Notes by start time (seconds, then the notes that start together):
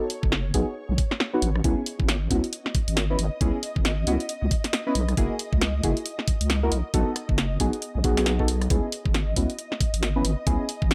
Already playing: C#5
0.10 open hi-hat
0.23 F#1, kick
0.32 snare
0.54 B1 B3 D#4 F#4 G#4, kick, open hi-hat
0.89 B1
0.98 kick, open hi-hat
1.11 snare
1.20 snare
1.33 B3 D#4 F#4 B4
1.42 A1, open hi-hat
1.56 cross-stick
1.64 C#2 B3 C#4 E4 G#4 D#5, kick, closed hi-hat
1.86 open hi-hat
2.00 G#1, kick
2.09 snare, closed hi-hat
2.30 C#2 B3 C#4 E4 F#4, kick, open hi-hat
2.44 closed hi-hat
2.53 closed hi-hat
2.66 snare
2.75 kick, open hi-hat
2.88 G#1, closed hi-hat
2.97 snare, closed hi-hat
3.10 B3 C#4 E4 B4
3.19 G#1, open hi-hat
3.41 C#2 B3 C#4 E4 G#4, kick, closed hi-hat
3.63 open hi-hat
3.76 G#1, kick
3.85 snare, closed hi-hat
4.07 C#2 B3 C#4 E4 F#4, open hi-hat
4.20 closed hi-hat
4.29 closed hi-hat
4.42 C#2
4.51 kick, open hi-hat
4.64 snare, closed hi-hat
4.73 snare, closed hi-hat
4.87 B3 C#4 E4 B4
4.95 B1, open hi-hat
5.09 cross-stick, closed hi-hat
5.17 F#1 A#3 E4 F#4 G#4, kick, closed hi-hat
5.39 open hi-hat
5.53 C#2, kick
5.61 snare, closed hi-hat
5.83 F#1 A#3 E4 F#4 G#4, kick, open hi-hat
5.97 closed hi-hat
6.06 closed hi-hat
6.19 snare
6.28 kick, open hi-hat
6.41 C#2, closed hi-hat
6.50 snare, closed hi-hat
6.63 A#3 E4 F#4 A#4
6.72 B1, open hi-hat
6.94 B1 B3 D#4 F#4 A4, kick, closed hi-hat
7.16 cross-stick, open hi-hat
7.29 F#1, kick
7.38 snare, closed hi-hat
7.60 B1 B3 D#4 F#4 G#4, kick, open hi-hat
7.73 closed hi-hat
7.82 closed hi-hat
7.95 B1
8.04 B1 B3 D#4 F#4 G#4, kick, open hi-hat
8.17 B3 D#4 F#4 G#4, cross-stick, snare, closed hi-hat
8.26 snare, closed hi-hat
8.39 B3 D#4 F#4 A4, kick
8.48 open hi-hat
8.62 cross-stick, closed hi-hat
8.70 C#2 B3 C#4 E4 G#4 D#5, kick, closed hi-hat
8.92 open hi-hat
9.06 G#1, kick
9.14 snare, closed hi-hat
9.36 C#2 B3 C#4 E4 F#4, kick, open hi-hat
9.50 closed hi-hat
9.59 closed hi-hat
9.72 snare
9.81 kick, open hi-hat
9.94 G#1, closed hi-hat
10.03 snare, closed hi-hat
10.16 B3 C#4 E4 B4
10.25 G#1, open hi-hat
10.47 C#2 B3 C#4 E4 G#4, kick, closed hi-hat
10.69 open hi-hat
10.82 G#1, kick
10.91 snare, closed hi-hat